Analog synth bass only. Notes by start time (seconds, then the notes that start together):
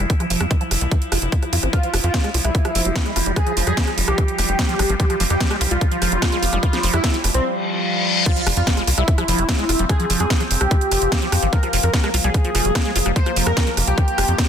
0.30 F1
0.40 F2
0.71 F1
0.81 C2
1.12 F1
1.22 F1
1.53 F2
1.63 G#1
1.93 F1
2.04 F2
2.34 C2
2.45 C2
2.75 F1
2.85 F1
3.16 F1
3.26 F1
3.57 F1
3.67 F2
3.98 F1
4.08 C2
4.38 F1
4.49 F1
4.79 G#1
4.89 G#1
5.20 F1
5.30 F2
5.61 C2
5.71 C2
6.02 F1
6.12 F1
6.43 F1
6.53 F1
6.83 F1
6.94 F2
7.24 F1
7.34 C2
8.47 F1
8.57 F2
8.87 C2
8.98 C2
9.28 F1
9.38 F1
9.69 F1
9.79 F1
10.10 F1
10.20 F2
10.51 F1
10.61 C2
10.92 F1
11.02 F1
11.32 F2
11.43 G#1
11.73 F1
11.83 F2
12.14 C2
12.24 C2
12.55 F1
12.65 F1
12.96 F1
13.06 F1
13.36 F1
13.47 F2
13.77 F1
13.87 C2
14.18 F1
14.28 F2